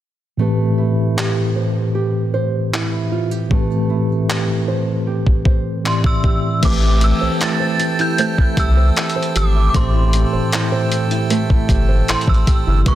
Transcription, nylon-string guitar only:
0.39 3.50 A3 medium
0.78 2.72 E4 medium
1.17 1.94 G4 medium
1.56 2.33 C5 medium
1.95 3.11 G4 medium
2.34 4.68 C5 medium
2.73 3.89 E4 medium
3.12 3.31 F4 medium
3.31 4.28 G4 medium
3.51 6.62 A3 medium
3.90 5.84 E4 medium
4.29 5.07 G4 medium
4.68 5.45 C5 medium
5.07 6.23 G4 medium
5.46 6.63 C5 medium
5.85 6.82 E4 medium
6.24 7.01 G4 medium
6.63 8.17 A3 medium
6.63 7.20 C5 medium
6.82 7.39 E4 medium
7.02 7.78 G4 medium
7.21 7.59 C5 medium
7.41 7.98 E4 medium
7.60 8.18 C5 medium
7.80 8.56 G4 medium
7.99 8.37 E4 medium
8.18 9.73 A3 medium
8.18 8.76 C5 medium
8.38 8.95 E4 medium
8.58 9.34 G4 medium
8.77 9.15 C5 medium
8.96 9.53 E4 medium
9.16 9.74 C5 medium
9.35 10.12 G4 medium
9.55 9.93 E4 medium
9.74 11.29 A3 medium
9.74 10.32 C5 medium
9.94 10.51 E4 medium
10.13 10.90 G4 medium
10.33 10.71 C5 medium
10.53 11.10 E4 medium
10.72 11.29 C5 medium
10.91 11.68 G4 medium
11.11 11.49 E4 medium
11.30 12.86 A3 medium
11.30 11.87 C5 medium
11.50 12.07 E4 medium
11.69 12.46 G4 medium
11.89 12.26 C5 medium
12.08 12.65 E4 medium
12.28 12.86 C5 medium
12.47 12.94 G4 medium
12.67 12.94 E4 medium
12.86 12.95 G#3 medium
12.86 12.95 B4 medium

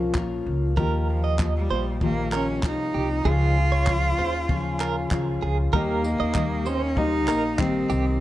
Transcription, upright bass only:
0.00 0.15 C2 medium
0.15 0.44 A#1 medium
0.46 0.75 C#2 medium
0.77 1.66 D#2 loud
1.70 2.63 A#1 medium
2.63 2.92 C2 medium
2.95 3.23 C2 medium
3.25 4.14 C#2 loud
4.18 5.07 D#2 medium
5.11 5.40 C#2 medium
5.43 5.71 C#2 medium
5.73 6.16 D#2 loud
6.20 7.28 D#2 medium
7.28 7.86 A#1 medium
7.90 8.18 C2 medium

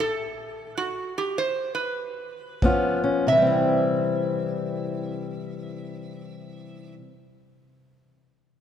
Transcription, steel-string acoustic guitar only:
2.62 3.23 C#3 medium
2.62 3.26 F3 medium
2.62 3.26 B3 medium
2.62 3.02 C#4 medium
2.62 3.27 F4 medium
3.04 3.25 C#4 medium
3.27 6.96 C3 medium
3.32 7.02 E3 medium
3.37 7.07 G3 medium
3.42 7.12 C4 medium
3.47 7.16 E4 medium

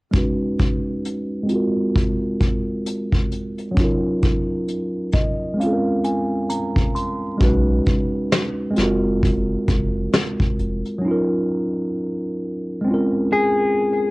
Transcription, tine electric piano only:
0.11 1.42 G#3 medium
0.11 1.50 C#4 medium
0.11 1.50 D#4 medium
0.16 1.51 F#4 medium
0.16 1.52 B4 medium
1.43 3.70 G#3 medium
1.43 3.71 C4 medium
1.50 3.73 F4 medium
1.50 3.75 F#4 medium
1.56 3.76 A#4 medium
3.71 5.52 F#3 medium
3.71 5.54 C#4 medium
3.77 5.55 D#4 medium
3.77 5.57 F4 medium
3.84 5.59 A#4 medium
5.14 5.56 D#5 medium
5.54 7.35 G#3 medium
5.54 7.36 C4 medium
5.60 7.38 C#4 medium
5.60 7.39 F4 medium
5.60 6.02 F5 medium
5.67 5.71 A4 medium
5.73 7.44 A#4 medium
6.05 6.47 G#5 medium
6.50 6.92 A#5 medium
6.95 7.38 C6 medium
7.38 8.69 G#3 medium
7.38 8.76 C#4 medium
7.38 8.77 D#4 medium
7.42 8.78 F#4 medium
7.42 8.79 B4 medium
8.70 10.97 G#3 medium
8.70 10.99 C4 medium
8.77 11.00 F4 medium
8.77 11.02 F#4 medium
8.83 11.03 A#4 medium
10.98 12.80 F#3 medium
10.98 12.81 C#4 medium
11.05 12.83 D#4 medium
11.05 12.84 F4 medium
11.11 12.86 A#4 medium
12.81 14.11 G#3 medium
12.81 14.11 C4 medium
12.87 14.11 C#4 medium
12.87 14.11 F4 medium
12.94 14.11 A#4 medium

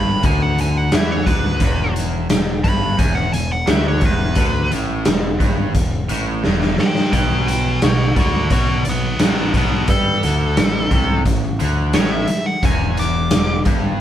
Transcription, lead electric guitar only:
0.00 0.23 B5 medium
0.26 0.42 G#5 medium
0.42 0.59 F#5 medium
0.61 0.77 G#5 medium
0.77 0.93 F#5 medium
0.95 1.11 E5 medium
1.12 1.28 C#5 medium
1.26 1.94 B4 medium
2.64 2.98 B5 medium
2.99 3.15 G#5 medium
3.15 3.32 F#5 medium
3.32 3.50 G#5 medium
3.52 3.69 F#5 loud
3.70 3.86 E5 medium
3.88 4.04 C#5 medium
4.06 4.71 B4 medium
6.80 7.12 B4 medium
6.80 7.12 G5 medium
7.13 7.45 B4 medium
7.13 7.47 G5 loud
7.47 7.79 B4 medium
7.47 7.81 G5 medium
7.84 8.15 F#4 medium
7.84 8.17 D5 medium
8.20 8.50 F#4 medium
8.20 8.52 D5 medium
8.52 8.84 F#4 medium
8.52 8.86 D5 medium
8.89 9.19 D#4 medium
8.89 9.21 B4 medium
9.23 9.54 D#4 medium
9.23 9.55 B4 medium
9.57 9.87 D#4 medium
9.57 9.89 B4 medium
9.90 11.23 A4 medium
11.95 12.12 C#5 medium
12.12 12.46 E5 medium
12.46 12.65 F#5 medium
12.65 12.98 G#5 loud
12.99 13.65 D6 loud

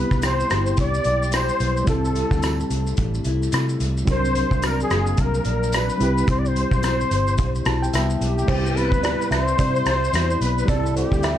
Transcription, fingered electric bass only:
0.11 0.42 C2 medium
0.51 0.73 G1 medium
0.78 1.00 C2 medium
1.05 1.49 B1 medium
1.60 1.82 B1 medium
1.87 2.23 C2 medium
2.31 2.62 D2 medium
2.70 2.92 C2 medium
2.98 3.20 A1 medium
3.25 3.47 C2 medium
3.53 3.75 C3 medium
3.80 4.02 C2 medium
4.08 4.43 C2 medium
4.51 4.82 C2 medium
4.91 5.12 F#1 medium
5.18 5.40 C2 medium
5.45 5.89 A#1 medium
6.00 6.22 C2 medium
6.28 6.63 C2 medium
6.71 7.02 B1 medium
7.11 7.39 G1 medium
7.39 7.60 B1 medium
7.66 7.88 B1 medium
7.93 8.15 C2 medium
8.21 8.43 B1 medium
8.48 8.92 C2 medium
8.92 9.14 D2 medium
9.31 9.53 C2 medium
9.59 9.81 C3 loud
9.86 10.08 C2 medium
10.13 10.35 E2 medium
10.41 10.63 B1 medium
10.68 11.04 C2 medium
11.12 11.34 D2 medium

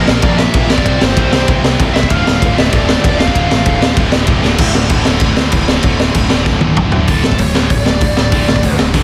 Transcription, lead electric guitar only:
0.00 0.23 A#4 medium
0.23 0.39 D5 loud
0.38 0.70 E5 loud
0.70 0.84 D5 medium
0.85 1.02 D5 loud
1.02 1.48 C5 medium
1.94 2.11 E5 loud
2.11 2.39 F5 loud
2.40 2.56 F5 loud
2.56 2.71 E5 loud
2.71 3.18 D5 loud
3.19 3.51 F5 loud
3.52 3.95 F5 loud
7.09 7.40 A4 medium
7.39 7.70 C#5 loud
7.71 7.82 C#5 loud
7.82 8.16 D5 loud
8.17 8.75 D5 medium

